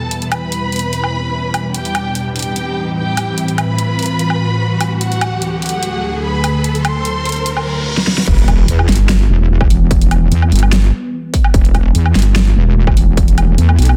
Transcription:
0.00 1.70 E2 medium
0.00 1.70 B2 medium
0.00 4.97 G3 medium
0.00 1.70 E4 medium
0.00 0.24 A4 medium
0.00 4.97 B4 medium
0.00 0.24 A5 loud
0.00 riser medium
0.11 closed hi-hat medium
0.22 closed hi-hat medium
0.32 1.67 B4 medium
0.32 1.67 B5 loud
0.32 closed hi-hat medium
0.32 low woodblock medium
0.52 closed hi-hat medium
0.72 closed hi-hat soft
0.76 closed hi-hat medium
0.79 closed hi-hat medium
0.93 closed hi-hat medium
1.04 low woodblock medium
1.54 closed hi-hat medium
1.54 low woodblock medium
1.74 4.98 A2 medium
1.74 4.98 E3 medium
1.74 4.98 C4 medium
1.74 2.28 G4 medium
1.74 2.28 G5 loud
1.74 closed hi-hat medium
1.85 closed hi-hat soft
1.95 closed hi-hat medium
1.95 low woodblock medium
2.15 closed hi-hat medium
2.36 2.89 G4 medium
2.36 2.89 G5 medium
2.36 closed hi-hat medium
2.36 open hi-hat medium
2.42 closed hi-hat medium
2.56 closed hi-hat medium
2.97 3.50 G4 medium
2.97 3.50 G5 loud
3.17 open hi-hat medium
3.17 low woodblock medium
3.38 closed hi-hat medium
3.48 closed hi-hat soft
3.58 4.93 B4 medium
3.58 4.93 B5 loud
3.58 closed hi-hat soft
3.58 low woodblock medium
3.79 closed hi-hat medium
3.99 closed hi-hat medium
3.99 open hi-hat medium
4.06 closed hi-hat medium
4.19 closed hi-hat medium
4.30 low woodblock medium
4.81 open hi-hat medium
4.81 low woodblock medium
5.01 7.84 D2 medium
5.01 7.84 D3 medium
5.01 7.84 F#3 medium
5.01 7.84 A3 medium
5.01 5.54 F#4 medium
5.01 7.84 A4 medium
5.01 5.54 F#5 loud
5.01 closed hi-hat medium
5.12 closed hi-hat medium
5.21 closed hi-hat medium
5.21 low woodblock medium
5.42 closed hi-hat medium
5.62 6.16 F#4 medium
5.62 6.16 F#5 loud
5.62 closed hi-hat medium
5.62 open hi-hat medium
5.69 closed hi-hat medium
5.83 closed hi-hat medium
6.23 6.77 B4 medium
6.23 6.77 B5 medium
6.44 open hi-hat loud
6.44 low woodblock medium
6.64 closed hi-hat medium
6.75 closed hi-hat medium
6.85 7.87 C5 medium
6.85 7.87 C6 loud
6.85 closed hi-hat medium
6.85 low woodblock medium
7.05 closed hi-hat medium
7.25 closed hi-hat medium
7.25 open hi-hat medium
7.32 closed hi-hat medium
7.36 closed hi-hat soft
7.46 closed hi-hat medium
7.46 reverse cymbal medium
7.57 low woodblock medium
7.97 snare medium
8.07 snare medium
8.18 snare medium
8.27 8.67 E1 loud
8.27 13.97 E3 medium
8.27 13.97 G3 medium
8.27 11.53 B3 medium
8.27 kick loud
8.27 closed hi-hat medium
8.27 crash loud
8.27 impact medium
8.38 closed hi-hat medium
8.48 kick medium
8.48 closed hi-hat medium
8.48 low woodblock medium
8.68 8.87 E2 loud
8.68 closed hi-hat medium
8.79 low woodblock medium
8.89 9.28 G1 loud
8.89 snare medium
8.89 closed hi-hat medium
8.89 open hi-hat medium
8.96 closed hi-hat medium
9.09 snare loud
9.09 closed hi-hat medium
9.29 9.69 E1 loud
9.61 kick loud
9.61 low woodblock soft
9.70 10.30 E1 loud
9.70 open hi-hat medium
9.91 kick loud
9.91 closed hi-hat medium
10.01 closed hi-hat medium
10.11 closed hi-hat medium
10.11 low woodblock medium
10.32 10.50 E2 loud
10.32 closed hi-hat medium
10.42 low woodblock medium
10.52 10.91 G1 loud
10.52 closed hi-hat medium
10.52 open hi-hat medium
10.59 closed hi-hat medium
10.59 low woodblock medium
10.72 snare loud
10.72 closed hi-hat medium
11.34 kick medium
11.34 open hi-hat loud
11.44 low woodblock medium
11.54 11.93 E1 medium
11.54 13.97 A3 medium
11.54 kick loud
11.54 closed hi-hat medium
11.65 closed hi-hat medium
11.74 kick medium
11.74 closed hi-hat medium
11.74 low woodblock medium
11.95 12.14 E2 loud
11.95 closed hi-hat medium
12.06 low woodblock medium
12.15 12.55 G1 loud
12.15 snare medium
12.15 closed hi-hat medium
12.15 open hi-hat medium
12.22 closed hi-hat medium
12.36 snare loud
12.36 closed hi-hat medium
12.56 12.95 E1 loud
12.87 kick loud
12.87 low woodblock soft
12.97 13.57 E1 loud
12.97 open hi-hat medium
13.17 kick loud
13.17 closed hi-hat medium
13.28 closed hi-hat medium
13.38 closed hi-hat medium
13.38 low woodblock medium
13.58 13.77 E2 loud
13.58 closed hi-hat medium
13.69 low woodblock medium
13.78 13.97 B1 loud
13.78 closed hi-hat medium
13.78 open hi-hat medium
13.85 closed hi-hat medium
13.85 low woodblock medium

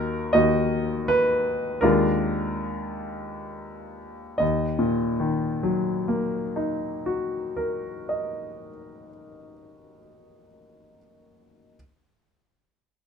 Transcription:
0.00 0.32 D#2 soft
0.00 0.32 A#3 soft
0.00 0.32 D#4 soft
0.00 0.32 F#4 soft
0.00 0.34 A#4 medium
0.33 1.79 D#2 soft
0.33 1.79 A#3 soft
0.33 1.79 D#4 soft
0.33 1.79 F#4 soft
0.33 1.10 D#5 medium
1.08 1.82 B4 medium
1.81 4.37 D#2 soft
1.81 4.37 G#3 soft
1.81 4.36 D4 soft
1.81 4.37 F4 soft
1.81 4.40 A#4 medium
4.38 8.29 D#2 soft
4.38 8.07 D#5 soft
4.79 8.68 A#2 soft
5.20 9.09 D#3 soft
5.63 9.53 F#3 soft
6.08 9.98 A#3 soft
6.56 10.46 D#4 soft
7.06 10.96 F#4 soft
7.57 10.99 A#4 soft
8.09 10.99 D#5 soft

